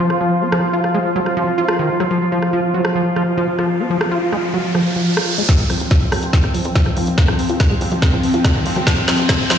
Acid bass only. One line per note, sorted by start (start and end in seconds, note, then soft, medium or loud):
0.21 0.43 F3 medium
0.42 0.49 C4 medium
0.52 0.59 F3 loud
0.73 0.81 F4 loud
0.94 0.99 G#3 loud
1.16 1.20 F#3 loud
1.37 1.44 F3 loud
1.58 1.65 F4 loud
1.79 1.89 D#3 medium
2.00 2.04 F#3 loud
2.11 2.18 F3 medium
2.32 2.39 F3 medium
2.53 2.60 F3 medium
2.74 2.81 F#3 medium
2.95 3.02 F3 medium
3.16 3.23 F3 medium
3.37 3.47 F3 loud
3.59 3.81 F3 medium
3.80 3.87 C4 medium
3.90 3.97 F3 loud
4.11 4.19 F4 loud
4.33 4.37 G#3 loud
4.54 4.58 F#3 loud
4.75 4.82 F3 loud
4.96 5.19 F3 medium
5.17 5.27 F4 medium
5.38 5.42 G#3 loud
5.49 5.56 F3 medium
5.70 5.77 F3 medium
5.91 5.98 F3 medium
6.12 6.19 F#3 medium
6.33 6.40 F3 medium
6.54 6.61 F3 medium
6.75 6.86 F3 loud
6.97 7.19 F3 medium
7.18 7.25 C4 medium
7.28 7.35 F3 loud
7.49 7.57 F4 loud
7.71 7.75 G#3 loud
7.92 7.96 F#3 loud
8.13 8.20 F3 loud
8.34 8.41 F4 loud
8.55 8.65 D#3 medium
8.76 8.80 F#3 loud
8.87 8.94 F3 medium
9.08 9.15 F3 medium
9.29 9.36 F3 medium
9.50 9.57 F3 medium